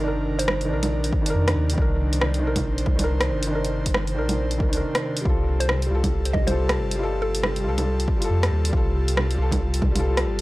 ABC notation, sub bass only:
X:1
M:4/4
L:1/8
Q:"Swing 16ths" 1/4=138
K:Cdor
V:1 name="Sub bass" clef=bass
G,,,3 B,,,2 z F,, E,, | C,,3 B,,,2 C,,2 G,,,- | G,,,3 B,,,2 C,, z2 | C,,3 C,,2 C,,2 G,,,- |
G,,,3 C,,2 z F,, E,, | C,,3 C,,2 C,,2 G,,, |]